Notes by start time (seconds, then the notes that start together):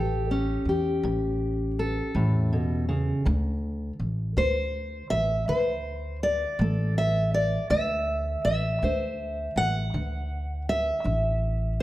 Already playing: A1 E3 G4 A4
0.31 C#4
0.65 E2 G4
1.03 A1 A2
1.79 A4
2.15 E2 A2
2.53 B2
2.89 C#3
3.25 D2 D3
3.99 A1
4.37 D2 A3 C5
5.10 A1 E5
5.48 D2 D3 C5
6.23 D5
6.59 A1 A3 A4
6.98 E5
7.34 D5
7.70 D2 D3 E5
8.45 A1 E5
8.82 D2 D4 C5
9.56 A1 F#5
9.94 D2 D3
10.69 E5
11.04 A1 D4